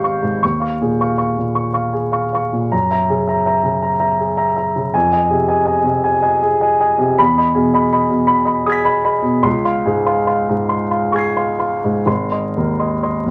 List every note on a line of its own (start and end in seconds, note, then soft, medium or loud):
0.00 0.39 G#1 soft
0.00 0.22 G#2 soft
0.00 0.45 G4 soft
0.00 0.03 F5 soft
0.00 0.21 F5 soft
0.00 0.04 C#6 soft
0.00 0.21 C#6 soft
0.00 0.40 G6 soft
0.00 0.41 C7 soft
0.22 0.43 G#2 soft
0.43 2.69 D#2 soft
0.43 0.60 C#6 soft
0.60 0.79 F5 soft
0.60 0.79 C#6 soft
0.82 1.36 A#2 soft
0.82 1.12 G#4 soft
1.01 1.16 F5 soft
1.01 1.17 C#6 soft
1.18 1.36 F5 soft
1.18 1.36 C#6 soft
1.38 1.68 A#2 soft
1.55 1.73 C#6 soft
1.73 1.92 F5 soft
1.73 1.92 C#6 soft
1.93 2.25 G#4 soft
2.12 2.30 F5 soft
2.12 2.31 C#6 soft
2.33 2.51 F5 soft
2.33 2.52 C#6 soft
2.53 2.72 A#2 soft
2.72 4.90 F#2 soft
2.72 2.90 A#5 soft
2.91 3.09 E5 soft
2.91 3.09 A#5 soft
3.10 3.62 C#3 soft
3.10 3.40 G#4 soft
3.28 3.45 E5 soft
3.28 3.45 A#5 soft
3.46 3.64 E5 soft
3.46 3.64 A#5 soft
3.63 3.94 C#3 soft
3.82 3.98 A#5 soft
4.00 4.18 E5 soft
4.00 4.18 A#5 soft
4.19 4.50 G#4 soft
4.37 4.55 E5 soft
4.37 4.55 A#5 soft
4.56 4.74 E5 soft
4.56 4.75 A#5 soft
4.76 4.94 C#3 soft
4.94 7.15 F2 soft
4.94 5.11 G#5 medium
5.13 5.29 D#5 soft
5.13 5.29 G#5 soft
5.30 5.83 C3 soft
5.30 5.59 G#4 soft
5.48 5.64 D#5 soft
5.48 5.65 G#5 soft
5.65 5.83 D#5 soft
5.65 5.83 G#5 soft
5.84 6.15 C3 soft
6.04 6.21 G#5 soft
6.22 6.40 D#5 soft
6.22 6.40 G#5 soft
6.42 6.73 G#4 soft
6.61 6.79 D#5 soft
6.61 6.79 G#5 soft
6.80 6.98 D#5 soft
6.80 6.98 G#5 soft
6.98 7.18 C3 soft
7.18 9.41 E2 soft
7.18 7.36 B5 medium
7.38 7.54 D#5 soft
7.38 7.54 B5 soft
7.54 8.08 B2 soft
7.54 7.85 G#4 soft
7.74 7.91 D#5 soft
7.74 7.91 B5 soft
7.92 8.10 D#5 soft
7.92 8.10 B5 soft
8.10 8.41 B2 soft
8.27 8.45 B5 medium
8.45 8.64 D#5 soft
8.45 8.65 B5 soft
8.66 8.98 G#4 soft
8.66 9.40 D#6 soft
8.66 9.42 G#6 soft
8.72 9.43 B6 soft
8.84 9.03 D#5 soft
8.84 9.03 B5 soft
9.05 9.23 D#5 soft
9.05 9.23 B5 soft
9.22 9.44 B2 soft
9.43 12.01 C#2 medium
9.43 9.64 C6 medium
9.65 9.84 F5 soft
9.65 9.84 C6 soft
9.86 10.48 G#2 soft
9.86 10.19 G#4 soft
10.06 10.26 F5 soft
10.06 10.26 C6 soft
10.27 10.47 F5 soft
10.27 10.47 C6 soft
10.49 10.84 G#2 soft
10.69 10.90 C6 soft
10.91 11.12 F5 soft
10.91 11.12 C6 soft
11.12 11.49 G#4 soft
11.12 12.01 C#6 soft
11.12 12.03 G#6 soft
11.18 12.04 C7 soft
11.37 11.57 F5 soft
11.37 11.57 C6 soft
11.59 11.80 F5 soft
11.59 11.80 C6 soft
11.84 12.07 G#2 soft
12.06 13.30 G#1 soft
12.06 12.30 C6 medium
12.32 12.53 D#5 soft
12.32 12.53 C6 soft
12.57 13.24 D#2 soft
12.57 12.94 A#4 soft
12.80 13.00 D#5 soft
12.80 13.00 C6 soft
13.03 13.24 D#5 soft
13.03 13.24 C6 soft
13.26 13.30 D#2 soft